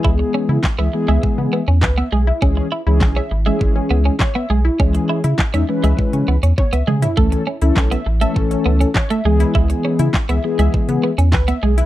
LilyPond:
<<
  \new Staff \with { instrumentName = "Synth arpeggio sound" } { \time 4/4 \key cis \minor \tempo 4 = 101 gis16 r8 e'16 r16 e''16 r16 e''16 gis16 b16 r8 b'16 e''16 gis'16 e'16 | gis16 r8 e'16 r16 e''16 r16 e''16 gis16 cis'16 r8 cis''16 e''16 gis'16 e'16 | gis16 r8 e'16 r16 e''16 r16 e''16 gis16 cis'16 r8 cis''16 e''16 gis'16 e'16 | a16 r8 e'16 r16 e''16 r16 e''16 a16 cis'16 r8 cis''16 e''16 gis'16 e'16 |
gis16 r8 e'16 r16 e''16 r16 e''16 gis16 b16 r8 b'16 e''16 gis'16 e'16 | }
  \new Staff \with { instrumentName = "Clean electric guitar" } { \time 4/4 \key cis \minor e'16 r16 cis'16 r8 b16 r16 gis16 r8 b16 cis'16 r16 b16 gis16 r16 | cis'16 r16 e'16 r8 cis'16 r16 gis16 r8 b16 cis'16 r16 b16 gis16 r16 | cis'16 r16 e'16 r8 cis'16 r16 gis16 r8 b16 cis'16 r16 b16 gis16 r16 | a16 r16 cis'16 r8 b16 r16 a16 r8 b16 cis'16 r16 a16 gis16 r16 |
e'16 r16 cis'16 r8 b16 r16 gis16 r8 b16 cis'16 r16 b16 gis16 r16 | }
  \new Staff \with { instrumentName = "Analog polysynth" } { \time 4/4 \key cis \minor <e gis b gis'>4 r16 <e gis b gis'>16 <e gis b gis'>4 r4. | <e gis cis' gis'>8 r16 <e gis cis' gis'>8 r8 <e gis cis' gis'>4 r4 r16 | <e gis cis' gis'>8. r8 <e gis cis' dis'>16 <e gis cis' b'>4 r4. | <e a cis' a'>8 r16 <e a cis' a'>8 r8 <e a cis' a'>4 r8. <e gis b gis'>8~ |
<e gis b gis'>4 r16 <e gis b gis'>16 <e gis b gis'>4 r4. | }
  \new Staff \with { instrumentName = "Analog synth bass" } { \clef bass \time 4/4 \key cis \minor cis,8 r16 cis16 r16 cis,16 r16 cis,16 cis16 cis16 r16 e,16 cis,8 b,,8 | cis,8 r16 cis,16 b,,8 gis,,8 gis,,8 cis,8 r8 b,,8 | cis,8 r16 cis16 r16 e,16 r16 cis,16 r16 cis16 cis,16 e,16 cis,16 cis,16 cis8 | cis,8 r16 cis,16 b,,8 a,,8 a,,8 cis,8 r8 cis,8 |
cis,8 r16 cis16 r16 cis,16 r16 cis,16 cis16 cis16 r16 e,16 cis,8 b,,8 | }
  \new DrumStaff \with { instrumentName = "Drums" } \drummode { \time 4/4 bd4 <hc bd sn>4 bd4 <hc bd sn>4 | bd4 <hc bd sn>4 bd4 <hc bd sn>4 | bd16 hh8 hh16 <hc bd sn>16 hh8 hh16 bd16 hh8 hh16 <bd tommh>16 hh16 toml16 <hh tomfh>16 | bd16 hh8 hh16 <hc bd sn>16 hh8 hh16 bd16 hh8 hh16 <hc bd sn>16 hh8 hh16 |
bd16 hh8 hh16 <hc bd sn>16 hh8 hh16 bd16 hh8 hh16 <hc bd sn>16 hh8 hh16 | }
>>